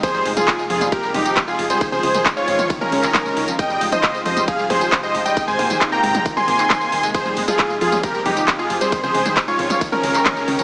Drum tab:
RD |x---x---x---x---|x---x---x---x---|x---x---x---x---|x---x---x---x---|
HH |x-oxx-oxx-oxx-ox|x-oxx-oxx-oxx-ox|x-oxx-oxx-oxx-ox|x-oxx-oxx-oxx-ox|
TB |xx-xxx-xxx-xxx-x|xx-xxx-xxx-xxx-x|xx-xxx-xxx-xxx-x|xx-xxx-xxx-xxx-x|
CP |----x-------x---|----x------xx---|----x-------x---|----x------xx---|
T2 |---o---o--o-----|---o---o-o--o---|---o---o--o-----|---o---o-o--o---|
BD |o---o---o---o---|o---o---o---o---|o---o---o---o---|o-o-o---o---o---|

RD |x---x---x---x---|x---x---x---x---|
HH |x-oxx-oxx-oxx-ox|x-oxx-oxx-oxx-ox|
TB |xx-x-x-xxx-xxx-x|xx-xxx-xxx-xxx-x|
CP |----x-------x---|----x------xx---|
T2 |---o---o--o-----|---o---o-o--o---|
BD |o---o---o---o---|o---o---o---o---|